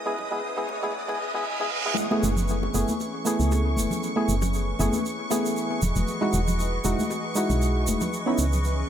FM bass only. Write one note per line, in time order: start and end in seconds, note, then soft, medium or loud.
2.23 2.69 F#1 loud
2.75 2.84 F#1 medium
3.40 3.79 C#2 loud
3.77 3.87 F#1 loud
4.29 4.74 F#1 loud
4.80 4.89 F#1 medium
5.82 5.92 E1 medium
5.96 6.04 E1 medium
6.34 6.79 E1 loud
6.85 6.94 E1 medium
7.50 7.89 B1 loud
7.87 7.97 E1 loud
8.39 8.84 C#2 loud